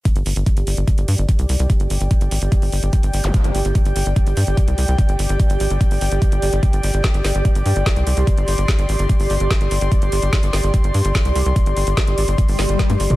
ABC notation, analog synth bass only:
X:1
M:4/4
L:1/16
Q:1/4=146
K:none
V:1 name="Analog synth bass" clef=bass
z G,,, G,,, G,,, z G,,, G,,, G,,, z G,,, G,, G,,, z C,, C,, C,, | z G,,, G,,, G,,, z G,,, _A,,, G,,, z G,,, G,,, G,,, z G,,, G,,, G,,, | z G,,, G,,, G,,, z G,,, G,,, G,,, z G,,, G,, G,,, z C,, C,, C,, | z G,,, G,,, G,,, z G,,, _A,,, G,,, z G,,, G,,, G,,, z G,,, G,,, G,,, |
z G,,, G,,, G,,, z G,,, G,,, G,,, z G,,, G,, G,,, z C,, C,, C,, | z G,,, G,,, G,,, z G,,, _A,,, G,,, z G,,, G,,, G,,, z G,,, G,,, G,,, | z G,,, G,,, G,,, z G,,, G,,, G,,, z G,,, G,, G,,, z C,, C,, C,, | z G,,, G,,, G,,, z G,,, _A,,, G,,, z G,,, G,,, G,,, z G,, G,,, G,,, |]